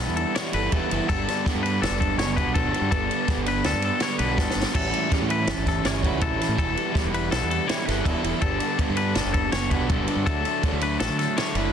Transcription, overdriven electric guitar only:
Already playing: G3 B3 E4
0.35 E3 G3 B3 E4
0.52 G3 B3 E4
0.71 E3 G3 B3 E4
0.90 G3 B3 E4
1.08 G2 D3 G3 B3 D4
1.29 G3 B3 D4
1.45 G2 D3 G3 B3 D4
1.64 G3 B3 D4
2.19 D3 G3 B3 D4
2.37 G3 B3 D4
2.55 G2 D3 G3 B3 D4
2.74 G3 B3 D4
2.91 G2 D3 G3 B3 D4
3.09 G3 B3 D4
3.27 G2 D3 G3 B3 D4
3.46 G3 B3 D4
4.00 D3 G3 B3 D4
4.19 G3 B3 D4
4.37 G2 D3 G3 B3 D4
4.55 G3 B3 D4
4.72 A2 E3 G3 C#4 E4
4.90 G3 C#4 E4
5.09 A2 E3 G3 C#4 E4
5.28 G3 C#4 E4
5.84 E3 G3 C#4 E4
6.00 G3 C#4 E4
6.18 A2 E3 G3 C#4 E4
6.37 G3 C#4 E4
6.54 E3 G3 B3 E4
6.74 G3 B3 E4
6.92 E3 G3 B3 E4
7.11 G3 B3 E4
7.66 E3 G3 B3 E4
7.85 G3 B3 E4
8.03 E3 G3 B3 E4
8.23 G3 B3 E4
8.40 G2 D3 G3 B3 D4
8.59 G3 B3 D4
8.78 G2 D3 G3 B3 D4
8.97 G3 B3 D4
9.53 D3 G3 B3 D4
9.72 G3 B3 D4
9.89 G2 D3 G3 B3 D4
10.08 G3 B3 D4
10.26 D3 F#3 A3 D4
10.46 F#3 A3 D4
10.64 D3 F#3 A3 D4
10.82 F#3 A3 D4
11.38 D3 F#3 A3 D4
11.56 F#3 A3 D4

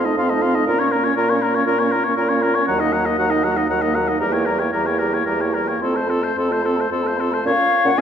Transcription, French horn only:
0.05 A3
0.18 C4
0.31 A3
0.43 C4
0.56 A3
0.68 C#4
0.80 A#3
0.93 C#4
1.05 A#3
1.16 C#4
1.29 A#3
1.42 C#4
1.55 A#3
1.67 C#4
1.80 A#3
1.92 C#4
2.06 A#3
2.17 C#4
2.30 A#3
2.42 C#4
2.55 A#3
2.67 F#3
2.80 A#3
2.93 F#3
3.06 A#3
3.18 F#3
3.32 A#3
3.44 F#3
3.58 A#3
3.71 F#3
3.83 A#3
3.97 F#3
4.10 A#3
4.22 G3
4.34 A#3
4.47 G3
4.60 A#3
4.73 G3
4.86 A#3
5.00 G3
5.13 A#3
5.26 G3
5.39 A#3
5.53 G3
5.67 A#3
5.81 C4
5.94 A3
6.08 C4
6.22 A3
6.37 C4
6.51 A3
6.65 C4
6.77 A3
6.91 C4
7.05 A3
7.18 C4
7.32 A3
7.45 C#4
7.85 C#4

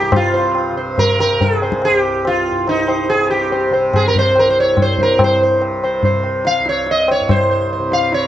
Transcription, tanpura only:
Already playing: C2 G2 C3
0.02 C3
0.14 G2
0.72 C3
1.32 C3
1.90 C2
2.50 G2
3.11 C3
3.70 C3
4.29 C2
4.87 G2
5.43 C3
6.03 C3
6.60 C2
7.20 G2
7.79 C3

